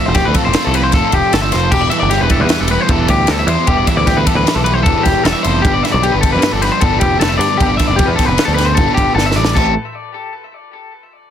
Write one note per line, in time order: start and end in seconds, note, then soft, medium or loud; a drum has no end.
0.00 0.15 F3 loud
0.00 0.16 A3 medium
0.00 0.17 C4 medium
0.00 0.18 F4 medium
0.06 0.23 E1 loud
0.06 0.16 C5 medium
0.15 0.52 F3 medium
0.15 0.37 A3 medium
0.15 0.35 C4 medium
0.15 0.25 G4 medium
0.15 kick loud
0.15 snare soft
0.15 ride loud
0.19 0.33 F4 medium
0.25 0.35 D2 medium
0.25 0.35 B4 medium
0.35 0.54 A3 medium
0.35 0.55 C4 medium
0.35 0.56 F4 medium
0.35 0.45 A4 medium
0.35 kick loud
0.35 ride loud
0.45 0.54 E1 medium
0.45 0.65 C5 medium
0.53 0.92 F3 loud
0.53 0.76 A3 medium
0.53 0.75 C4 medium
0.53 0.72 F4 loud
0.53 snare loud
0.53 ride loud
0.65 0.95 C2 medium
0.65 0.75 A4 medium
0.74 0.93 A3 medium
0.74 0.94 C4 medium
0.74 0.95 F4 medium
0.74 0.83 B4 medium
0.74 ride medium
0.83 0.94 C5 medium
0.92 1.02 F1 medium
0.92 1.32 F3 medium
0.92 1.33 A3 medium
0.92 1.34 C4 medium
0.92 1.14 A4 medium
0.92 kick loud
0.92 snare soft
0.92 ride loud
0.96 1.34 F4 medium
1.12 1.21 F1 medium
1.12 1.33 G4 medium
1.12 kick medium
1.12 ride medium
1.33 1.51 G1 medium
1.33 1.71 F3 loud
1.33 1.54 A3 loud
1.33 1.53 C4 loud
1.33 1.52 F4 loud
1.33 1.41 A4 medium
1.33 snare loud
1.33 ride loud
1.42 1.52 E5 medium
1.52 1.71 F1 medium
1.52 1.72 A3 medium
1.52 1.72 C4 medium
1.52 1.71 F4 medium
1.52 1.72 C5 medium
1.52 snare soft
1.52 ride medium
1.71 1.88 E1 loud
1.71 2.10 E3 medium
1.71 1.94 G3 loud
1.71 1.92 B3 loud
1.71 1.90 E4 loud
1.71 1.82 G4 medium
1.71 kick loud
1.71 crash medium
1.81 1.90 D5 medium
1.90 2.12 B3 medium
1.90 2.13 E4 medium
1.90 1.99 E5 medium
1.90 ride medium
1.94 2.11 G3 medium
2.00 2.18 G1 medium
2.00 2.10 D5 medium
2.10 2.48 E3 medium
2.10 2.33 G3 medium
2.10 2.31 B3 medium
2.10 2.29 E4 medium
2.10 2.21 G4 medium
2.10 snare soft
2.10 ride loud
2.21 2.41 E1 medium
2.21 2.31 B4 medium
2.30 2.49 G3 medium
2.30 2.50 B3 medium
2.30 2.52 E4 medium
2.30 2.41 A4 medium
2.30 kick medium
2.30 ride medium
2.40 2.56 E2 medium
2.40 2.60 B4 medium
2.49 2.87 E3 medium
2.49 2.73 G3 medium
2.49 2.70 B3 medium
2.49 2.68 E4 loud
2.49 snare loud
2.49 ride medium
2.60 2.76 E1 medium
2.60 2.70 A4 medium
2.68 2.90 B3 medium
2.68 2.90 E4 medium
2.68 2.81 B4 medium
2.68 ride medium
2.73 2.89 G3 medium
2.81 2.90 C5 medium
2.88 3.06 E1 medium
2.88 3.26 E3 medium
2.88 3.28 G3 medium
2.88 3.29 B3 medium
2.88 3.29 E4 medium
2.88 3.09 A4 medium
2.88 kick loud
2.88 ride loud
3.08 3.25 D2 loud
3.08 3.30 G4 medium
3.08 kick medium
3.08 ride medium
3.27 3.45 D2 loud
3.27 3.66 E3 loud
3.27 3.50 G3 loud
3.27 3.50 B3 loud
3.27 3.47 E4 loud
3.27 3.39 A4 medium
3.27 snare loud
3.27 ride loud
3.39 3.48 E5 medium
3.47 3.55 E2 loud
3.47 3.69 B3 medium
3.47 3.69 E4 medium
3.47 3.68 C5 medium
3.47 ride medium
3.51 3.68 G3 medium
3.67 3.84 E1 loud
3.67 4.06 E3 loud
3.67 3.90 G3 loud
3.67 3.88 B3 loud
3.67 3.86 E4 loud
3.67 3.77 G4 loud
3.67 kick loud
3.67 ride loud
3.77 3.87 D5 medium
3.87 4.08 G3 medium
3.87 4.09 B3 medium
3.87 4.09 E4 medium
3.87 3.97 E5 medium
3.87 kick medium
3.87 ride medium
3.97 4.13 D2 loud
3.97 4.07 D5 medium
4.07 4.45 E3 medium
4.07 4.29 G3 medium
4.07 4.27 B3 medium
4.07 4.24 E4 medium
4.07 4.17 G4 medium
4.07 kick loud
4.07 snare soft
4.07 ride loud
4.17 4.25 D2 medium
4.17 4.26 B4 medium
4.25 4.47 G3 medium
4.25 4.48 B3 medium
4.25 4.48 E4 medium
4.25 4.36 A4 medium
4.25 kick medium
4.25 ride medium
4.35 4.44 D2 medium
4.35 4.55 B4 medium
4.46 4.84 E3 medium
4.46 4.68 G3 medium
4.46 4.67 B3 loud
4.46 4.65 E4 medium
4.46 snare loud
4.46 ride loud
4.55 4.88 B1 loud
4.55 4.64 A4 medium
4.64 4.87 B3 medium
4.64 4.87 E4 medium
4.64 4.74 B4 medium
4.64 ride medium
4.69 4.86 G3 medium
4.74 4.83 C5 medium
4.83 4.94 E1 loud
4.83 5.23 E3 medium
4.83 5.25 G3 medium
4.83 5.04 A4 medium
4.83 kick loud
4.83 ride loud
4.87 5.26 B3 medium
4.87 5.26 E4 medium
5.03 5.14 E1 medium
5.03 5.24 G4 medium
5.03 kick medium
5.03 snare soft
5.03 ride medium
5.24 5.33 E1 loud
5.24 5.62 E3 loud
5.24 5.46 G3 loud
5.24 5.45 B3 loud
5.24 5.34 A4 loud
5.24 snare loud
5.24 ride loud
5.28 5.43 E4 loud
5.33 5.43 E5 medium
5.43 5.61 F1 medium
5.43 5.65 G3 medium
5.43 5.66 B3 medium
5.43 5.63 E4 medium
5.43 5.63 C5 medium
5.43 ride medium
5.62 5.81 G1 loud
5.62 6.07 G2 loud
5.62 6.01 D3 loud
5.62 5.85 F3 loud
5.62 5.73 G4 loud
5.62 kick loud
5.62 ride loud
5.66 5.84 B3 loud
5.66 5.82 D4 medium
5.73 5.83 D5 medium
5.83 6.03 F3 medium
5.83 6.04 B3 medium
5.83 6.05 D4 medium
5.83 5.92 E5 medium
5.83 snare soft
5.83 ride medium
5.92 6.10 B1 loud
5.92 6.03 D5 medium
6.02 6.41 D3 medium
6.02 6.26 F3 medium
6.02 6.24 B3 medium
6.02 6.23 D4 medium
6.02 6.13 G4 medium
6.02 ride medium
6.12 6.36 G1 medium
6.12 6.21 B4 medium
6.21 6.43 B3 medium
6.21 6.45 D4 medium
6.21 6.32 A4 medium
6.21 kick medium
6.21 ride medium
6.26 6.42 F3 medium
6.33 6.50 G2 medium
6.33 6.52 B4 medium
6.41 6.81 G2 medium
6.41 6.79 D3 medium
6.41 6.64 F3 medium
6.41 6.63 B3 loud
6.41 6.61 D4 medium
6.41 snare loud
6.41 ride loud
6.52 6.69 G1 medium
6.52 6.62 A4 medium
6.62 6.81 F3 medium
6.62 6.82 B3 medium
6.62 6.82 D4 medium
6.62 6.72 B4 medium
6.62 snare soft
6.62 ride medium
6.72 6.81 C5 medium
6.80 6.98 G1 loud
6.80 7.20 D3 medium
6.80 7.20 F3 medium
6.80 7.21 B3 medium
6.80 7.22 D4 medium
6.80 6.99 A4 loud
6.80 kick loud
6.80 ride loud
7.00 7.17 F1 loud
7.00 7.19 G4 medium
7.00 kick medium
7.00 ride medium
7.20 7.37 F1 loud
7.20 7.57 G2 loud
7.20 7.58 D3 loud
7.20 7.41 F3 loud
7.20 7.40 B3 loud
7.20 7.38 D4 loud
7.20 7.30 A4 medium
7.20 snare loud
7.20 ride loud
7.29 7.37 E5 medium
7.38 7.48 G2 loud
7.38 7.59 B3 medium
7.38 7.60 D4 medium
7.38 7.59 D5 medium
7.38 ride medium
7.42 7.59 F3 medium
7.42 snare soft
7.58 7.77 G1 loud
7.58 7.98 G2 medium
7.58 7.97 D3 loud
7.58 7.80 F3 loud
7.58 7.79 B3 loud
7.58 7.69 G4 loud
7.58 kick loud
7.58 ride loud
7.62 7.77 D4 loud
7.66 7.77 D5 medium
7.77 7.99 B3 medium
7.77 8.00 D4 medium
7.77 7.87 E5 medium
7.77 kick medium
7.77 snare soft
7.77 ride medium
7.82 7.98 F3 medium
7.87 8.05 F1 loud
7.87 7.98 D5 medium
7.96 8.36 D3 medium
7.96 8.18 F3 medium
7.96 8.17 B3 medium
7.96 8.08 G4 medium
7.96 kick loud
7.96 ride loud
8.01 8.15 D4 medium
8.05 8.16 E2 medium
8.05 8.15 B4 medium
8.16 8.37 F3 medium
8.16 8.38 B3 medium
8.16 8.39 D4 medium
8.16 8.25 A4 medium
8.16 kick medium
8.16 ride medium
8.20 snare soft
8.25 8.36 F1 medium
8.25 8.45 B4 medium
8.37 8.77 G2 medium
8.37 8.76 D3 medium
8.37 8.59 F3 medium
8.37 8.57 B3 medium
8.37 8.56 D4 medium
8.37 snare loud
8.37 ride loud
8.45 8.79 D2 medium
8.45 8.54 A4 medium
8.54 8.79 B3 medium
8.54 8.80 D4 medium
8.54 8.66 B4 medium
8.54 ride medium
8.60 8.77 F3 medium
8.60 snare soft
8.65 8.76 C5 medium
8.75 8.86 G1 loud
8.75 9.15 D3 medium
8.75 9.16 F3 medium
8.75 8.94 A4 medium
8.75 kick loud
8.75 ride loud
8.80 9.17 B3 medium
8.80 9.18 D4 medium
8.94 9.05 G1 medium
8.94 9.14 G4 medium
8.94 kick medium
8.94 ride medium
9.15 9.34 G1 medium
9.15 9.54 G2 medium
9.15 9.55 D3 loud
9.15 9.36 F3 medium
9.15 9.34 B3 loud
9.15 9.26 A4 medium
9.15 snare medium
9.19 9.32 D4 loud
9.26 9.36 E5 medium
9.31 9.54 D4 medium
9.31 snare medium
9.35 9.54 A1 medium
9.35 9.55 F3 medium
9.35 9.55 B3 medium
9.35 9.56 D5 medium
9.45 snare loud
9.55 9.75 A1 loud
9.55 9.71 A2 medium
9.55 9.72 E3 medium
9.55 9.72 A3 loud
9.55 9.72 C4 loud
9.55 9.72 E4 loud
9.55 9.74 A4 medium
9.55 9.72 A4 loud
9.55 kick loud
9.55 crash medium